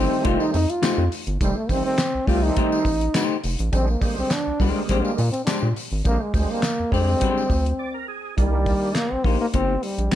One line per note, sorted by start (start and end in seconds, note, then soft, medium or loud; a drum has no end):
0.00 0.56 D#3 medium
0.00 0.57 G3 medium
0.00 0.16 A3 medium
0.00 0.57 A3 medium
0.00 0.27 C4 loud
0.00 0.57 C4 loud
0.00 0.16 D#4 medium
0.00 0.17 G4 medium
0.00 0.17 C5 medium
0.11 tambourine soft
0.24 0.37 F1 loud
0.24 0.45 A3 medium
0.24 0.45 D#4 loud
0.24 0.43 F4 loud
0.24 0.45 G4 loud
0.24 0.46 C5 loud
0.24 kick loud
0.24 closed hi-hat loud
0.40 0.53 D#4 loud
0.40 tambourine medium
0.54 0.66 F2 medium
0.54 0.71 D#4 loud
0.54 open hi-hat medium
0.54 tambourine medium
0.69 1.12 F4 medium
0.69 closed hi-hat medium
0.69 tambourine soft
0.82 1.03 A3 medium
0.82 1.03 D#4 medium
0.82 1.03 G4 medium
0.82 1.04 C5 loud
0.82 snare loud
0.82 clap loud
0.82 closed hi-hat loud
0.82 tambourine loud
0.98 1.09 F2 loud
1.12 open hi-hat medium
1.12 tambourine medium
1.27 1.38 G1 medium
1.27 closed hi-hat medium
1.40 1.53 F1 loud
1.40 1.57 D#3 medium
1.40 1.57 G3 medium
1.40 1.58 G3 medium
1.40 1.57 A3 medium
1.40 1.57 C4 medium
1.40 kick loud
1.40 closed hi-hat medium
1.40 tambourine medium
1.56 1.72 A3 medium
1.69 1.82 A1 loud
1.69 2.00 D#3 medium
1.69 2.00 G3 medium
1.69 2.00 A3 medium
1.69 1.85 C4 loud
1.69 2.01 C4 medium
1.69 kick medium
1.69 open hi-hat medium
1.69 tambourine soft
1.85 2.29 C4 loud
1.98 snare loud
1.98 clap medium
1.98 closed hi-hat medium
1.98 tambourine loud
2.14 2.20 C2 soft
2.27 2.51 C2 medium
2.27 2.89 D#3 medium
2.27 2.89 G3 medium
2.27 2.48 A3 medium
2.27 2.89 A3 medium
2.27 2.89 C4 loud
2.27 2.48 D#4 medium
2.27 2.45 F4 loud
2.27 2.49 G4 medium
2.27 2.49 D5 medium
2.27 kick medium
2.27 open hi-hat medium
2.27 tambourine medium
2.43 3.44 D#4 loud
2.43 tambourine soft
2.57 2.77 A3 medium
2.57 2.78 D#4 medium
2.57 2.78 G4 loud
2.57 2.78 C5 loud
2.57 kick loud
2.57 closed hi-hat loud
2.72 tambourine medium
2.85 3.08 A1 medium
2.85 kick medium
2.85 open hi-hat medium
2.85 tambourine soft
3.01 closed hi-hat medium
3.14 3.36 A3 medium
3.14 3.36 D#4 medium
3.14 3.36 G4 medium
3.14 3.36 C5 loud
3.14 snare loud
3.14 clap loud
3.14 closed hi-hat loud
3.14 tambourine loud
3.44 3.56 F1 medium
3.44 open hi-hat medium
3.44 tambourine medium
3.59 3.70 A1 loud
3.59 closed hi-hat medium
3.72 3.96 A#1 loud
3.72 3.88 D3 medium
3.72 3.89 G3 medium
3.72 3.89 G#3 medium
3.72 3.87 C4 loud
3.72 3.89 C4 medium
3.72 kick loud
3.72 closed hi-hat medium
3.72 tambourine medium
3.88 4.01 A#3 medium
3.88 tambourine soft
4.01 4.32 D3 medium
4.01 4.32 G3 medium
4.01 4.32 G#3 medium
4.01 4.16 A#3 medium
4.01 4.33 C4 medium
4.01 kick loud
4.01 open hi-hat medium
4.01 tambourine soft
4.18 4.23 C2 soft
4.18 4.34 C4 medium
4.18 tambourine soft
4.31 4.60 D4 loud
4.31 snare medium
4.31 clap medium
4.31 closed hi-hat medium
4.31 tambourine medium
4.47 4.52 C2 soft
4.59 4.72 C2 loud
4.59 5.21 D3 medium
4.59 5.21 G3 medium
4.59 4.81 G#3 medium
4.59 5.21 G#3 medium
4.59 5.21 A#3 medium
4.59 4.81 D4 medium
4.59 4.81 G4 medium
4.59 4.81 C5 medium
4.59 kick loud
4.59 open hi-hat medium
4.59 tambourine medium
4.89 5.02 A#1 loud
4.89 5.10 G#3 loud
4.89 5.05 C4 medium
4.89 5.10 D4 medium
4.89 5.10 G4 medium
4.89 5.10 C5 loud
4.89 kick medium
4.89 closed hi-hat loud
5.04 5.16 A#3 medium
5.04 tambourine medium
5.16 5.30 A#2 loud
5.16 5.31 A#3 medium
5.16 open hi-hat medium
5.16 tambourine medium
5.32 5.44 C4 medium
5.32 closed hi-hat medium
5.32 tambourine soft
5.45 5.68 G#3 medium
5.45 5.58 D4 medium
5.45 5.68 D4 medium
5.45 5.68 G4 medium
5.45 5.68 C5 medium
5.45 snare loud
5.45 clap loud
5.45 closed hi-hat loud
5.45 tambourine medium
5.63 5.73 A#2 medium
5.76 open hi-hat medium
5.76 tambourine medium
5.92 6.02 G#1 medium
6.04 6.17 A#1 loud
6.04 6.21 D3 medium
6.04 6.21 G3 medium
6.04 6.21 G#3 medium
6.04 6.24 A#3 loud
6.04 6.21 C4 medium
6.04 kick loud
6.04 closed hi-hat loud
6.04 tambourine medium
6.22 6.34 G#3 medium
6.33 6.46 D2 loud
6.33 6.64 D3 medium
6.33 6.64 G3 medium
6.33 6.65 G#3 medium
6.33 6.52 G#3 medium
6.33 6.65 C4 medium
6.33 kick loud
6.33 open hi-hat medium
6.33 tambourine medium
6.51 6.93 A#3 loud
6.51 tambourine soft
6.63 snare loud
6.63 clap medium
6.63 closed hi-hat medium
6.63 tambourine loud
6.80 6.85 F2 soft
6.91 7.15 F2 loud
6.91 7.53 D3 medium
6.91 7.53 G3 medium
6.91 7.53 G#3 medium
6.91 7.13 G#3 medium
6.91 7.53 C4 medium
6.91 8.05 C4 loud
6.91 7.13 D4 medium
6.91 7.13 G4 medium
6.91 7.13 D5 medium
6.91 kick medium
6.91 open hi-hat medium
6.91 tambourine medium
7.08 tambourine soft
7.21 7.42 G#3 medium
7.21 7.42 D4 loud
7.21 7.43 G4 loud
7.21 7.43 C5 loud
7.21 kick loud
7.21 closed hi-hat loud
7.38 tambourine medium
7.50 7.73 D2 loud
7.50 kick medium
7.50 open hi-hat medium
7.50 tambourine medium
7.66 closed hi-hat medium
7.79 7.93 D5 medium
7.94 8.07 A#4 medium
8.08 8.35 G#4 medium
8.37 8.73 C2 loud
8.37 8.98 D#3 medium
8.37 8.98 G3 medium
8.37 8.98 G3 loud
8.37 8.99 A#3 medium
8.37 8.99 D4 medium
8.37 kick loud
8.37 closed hi-hat medium
8.66 kick loud
8.66 open hi-hat medium
8.95 9.14 A#3 loud
8.95 snare medium
8.95 clap medium
8.95 closed hi-hat medium
9.12 9.17 A#1 soft
9.12 9.27 C4 loud
9.24 9.37 A#1 medium
9.24 9.45 A#3 medium
9.24 9.40 A#3 medium
9.24 9.45 D#4 medium
9.24 9.46 G4 medium
9.24 9.46 C5 medium
9.24 kick medium
9.24 open hi-hat medium
9.41 9.47 A#3 loud
9.54 9.77 G1 loud
9.54 9.74 A#3 medium
9.54 9.85 C4 loud
9.54 9.75 D#4 medium
9.54 9.75 G4 medium
9.54 9.75 C5 medium
9.54 kick loud
9.54 closed hi-hat loud
9.83 10.15 G3 medium
9.83 open hi-hat medium
9.98 10.09 A#1 medium
9.98 closed hi-hat medium
10.12 10.15 A#3 medium
10.12 10.15 D#4 medium
10.12 snare loud
10.12 clap loud
10.12 closed hi-hat loud